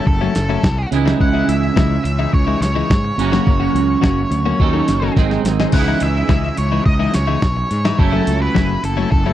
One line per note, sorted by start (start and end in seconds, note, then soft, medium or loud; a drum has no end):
0.00 0.90 F#3 medium
0.00 0.90 A3 medium
0.00 0.93 C#4 medium
0.00 0.91 E4 medium
0.07 0.27 F#1 medium
0.07 0.88 A4 medium
0.07 muted clean electric guitar stroke soft
0.07 kick loud
0.21 0.34 F#3 medium
0.21 0.34 A3 medium
0.21 0.34 C#4 medium
0.21 0.35 E4 medium
0.35 0.56 F#1 medium
0.35 snare medium
0.35 closed hi-hat medium
0.49 0.62 F#3 medium
0.49 0.63 A3 medium
0.49 0.63 C#4 medium
0.49 0.63 E4 medium
0.63 0.84 C2 medium
0.63 kick loud
0.63 snare loud
0.77 muted clean electric guitar stroke soft
0.91 1.12 C#2 medium
0.91 3.17 C#3 medium
0.91 3.17 E3 medium
0.91 3.17 G#3 medium
0.91 3.18 D#4 medium
0.91 3.18 E4 loud
0.91 closed hi-hat medium
1.05 1.25 E3 medium
1.05 1.24 G#3 medium
1.05 1.24 D#4 medium
1.05 1.24 E4 medium
1.05 snare medium
1.20 1.41 C#2 medium
1.20 1.47 F#5 loud
1.20 kick loud
1.33 1.53 E3 medium
1.33 1.53 G#3 medium
1.33 1.53 D#4 medium
1.33 1.52 E4 medium
1.48 1.69 C#2 medium
1.48 2.03 E5 medium
1.48 closed hi-hat medium
1.76 1.97 C#2 medium
1.76 1.95 E3 medium
1.76 1.95 G#3 medium
1.76 1.96 D#4 medium
1.76 1.96 E4 medium
1.76 kick medium
1.76 snare loud
2.04 2.25 C#2 medium
2.04 2.31 E5 medium
2.04 closed hi-hat medium
2.19 2.32 E3 medium
2.19 2.33 G#3 medium
2.19 2.33 D#4 medium
2.19 2.33 E4 medium
2.33 2.54 C#2 medium
2.33 2.61 C#5 medium
2.33 muted clean electric guitar stroke soft
2.33 kick loud
2.47 2.60 E3 medium
2.47 2.60 G#3 medium
2.47 2.61 D#4 medium
2.47 2.61 E4 medium
2.60 2.81 C#2 medium
2.60 5.13 C#5 medium
2.60 muted clean electric guitar stroke soft
2.60 snare medium
2.60 closed hi-hat medium
2.75 2.89 E3 medium
2.75 2.89 G#3 medium
2.75 2.89 D#4 medium
2.75 2.90 E4 medium
2.90 3.10 G#2 medium
2.90 muted clean electric guitar stroke soft
2.90 kick loud
2.90 snare loud
3.04 muted clean electric guitar stroke soft
3.18 3.38 F#1 medium
3.18 4.58 F#2 medium
3.18 4.58 C#3 medium
3.18 4.59 F#3 medium
3.18 4.59 A#3 medium
3.18 4.59 C#4 medium
3.18 4.59 F#4 medium
3.18 closed hi-hat medium
3.32 3.51 F#3 medium
3.32 3.51 A#3 medium
3.32 3.51 C#4 medium
3.32 3.51 F#4 medium
3.32 snare medium
3.47 3.67 F#1 medium
3.47 kick loud
3.60 3.80 F#3 medium
3.60 3.79 A#3 medium
3.60 3.79 C#4 medium
3.60 3.79 F#4 medium
3.74 3.95 C#2 medium
3.74 closed hi-hat medium
4.01 4.24 F#1 medium
4.01 4.21 F#3 medium
4.01 4.21 A#3 medium
4.01 4.21 C#4 medium
4.01 4.21 F#4 loud
4.01 kick medium
4.01 snare medium
4.31 4.51 D2 medium
4.31 closed hi-hat medium
4.45 4.59 F#3 medium
4.45 4.60 A#3 medium
4.45 4.60 C#4 medium
4.45 4.60 F#4 medium
4.60 4.80 D#2 medium
4.60 5.15 D#3 medium
4.60 5.15 F#3 medium
4.60 5.15 C#4 medium
4.60 5.16 D#4 medium
4.60 5.16 A4 loud
4.60 kick loud
4.73 4.87 F#3 medium
4.73 4.88 C#4 medium
4.73 4.88 D#4 medium
4.73 4.88 A4 medium
4.88 5.09 F#1 medium
4.88 muted clean electric guitar stroke soft
4.88 snare medium
4.88 closed hi-hat medium
5.02 5.17 F#3 medium
5.02 5.17 C#4 medium
5.02 5.16 D#4 medium
5.02 5.16 A4 medium
5.16 5.37 G#1 medium
5.16 5.71 G#2 medium
5.16 5.71 D#3 medium
5.16 5.72 G#3 medium
5.16 5.72 C4 medium
5.16 5.72 D#4 medium
5.16 5.72 G#4 loud
5.16 muted clean electric guitar stroke soft
5.16 kick loud
5.16 snare medium
5.31 muted clean electric guitar stroke soft
5.31 snare medium
5.44 5.65 G#1 medium
5.44 snare medium
5.44 closed hi-hat medium
5.60 5.74 G#3 medium
5.60 5.74 C4 medium
5.60 5.74 D#4 medium
5.60 5.74 G#4 medium
5.60 snare medium
5.72 5.93 C#2 medium
5.72 7.97 C#3 medium
5.72 7.98 E3 medium
5.72 7.98 G#3 medium
5.72 7.98 D#4 medium
5.72 8.00 E4 medium
5.72 6.00 F#5 loud
5.72 kick loud
5.72 crash loud
5.88 6.06 E3 medium
5.88 6.06 G#3 medium
5.88 6.06 D#4 medium
5.88 6.06 E4 medium
6.00 6.22 C#2 medium
6.00 6.29 E5 loud
6.00 closed hi-hat medium
6.29 6.49 C#2 loud
6.29 6.48 E3 medium
6.29 6.48 G#3 medium
6.29 6.48 D#4 medium
6.29 6.48 E4 medium
6.29 6.56 E5 medium
6.29 kick loud
6.29 snare loud
6.57 6.78 C#2 medium
6.57 6.85 C#5 medium
6.57 closed hi-hat medium
6.72 6.85 E3 medium
6.72 6.85 G#3 medium
6.72 6.85 D#4 medium
6.72 6.86 E4 medium
6.86 7.07 C#2 medium
6.86 7.15 D#5 medium
6.86 muted clean electric guitar stroke soft
6.86 kick loud
6.99 7.12 E3 medium
6.99 7.12 G#3 medium
6.99 7.13 D#4 medium
6.99 7.13 E4 medium
7.13 7.35 C#2 medium
7.13 8.02 C#5 loud
7.13 muted clean electric guitar stroke soft
7.13 snare medium
7.13 closed hi-hat medium
7.27 7.41 E3 medium
7.27 7.41 G#3 medium
7.27 7.41 D#4 medium
7.27 7.41 E4 medium
7.42 7.63 B1 medium
7.42 muted clean electric guitar stroke soft
7.42 kick loud
7.42 snare loud
7.57 muted clean electric guitar stroke soft
7.71 7.91 G#2 medium
7.71 closed hi-hat medium
7.85 8.00 E3 medium
7.85 7.99 G#3 medium
7.85 7.99 D#4 medium
7.85 7.99 E4 medium
7.85 snare medium
7.98 8.19 F#1 medium
7.98 9.33 F#3 medium
7.98 9.33 A3 medium
7.98 9.33 C#4 medium
7.98 9.33 E4 loud
7.98 8.42 A4 medium
7.98 kick loud
8.12 8.31 F#3 medium
8.12 8.31 A3 medium
8.12 8.31 C#4 medium
8.12 8.31 E4 medium
8.27 8.47 C#2 medium
8.27 closed hi-hat medium
8.42 8.84 B4 medium
8.55 8.76 F#1 medium
8.55 8.73 F#3 medium
8.55 8.74 A3 medium
8.55 8.74 C#4 medium
8.55 8.74 E4 medium
8.55 kick medium
8.55 snare loud
8.83 9.04 F#1 medium
8.83 9.10 A4 medium
8.83 closed hi-hat medium
8.97 9.10 F#3 medium
8.97 9.11 A3 medium
8.97 9.11 C#4 medium
8.97 9.11 E4 loud
9.11 9.32 F#1 medium
9.11 9.33 A4 medium
9.11 muted clean electric guitar stroke soft
9.11 kick loud
9.26 9.33 F#3 medium
9.26 9.33 A3 medium
9.26 9.33 C#4 medium
9.26 9.33 E4 medium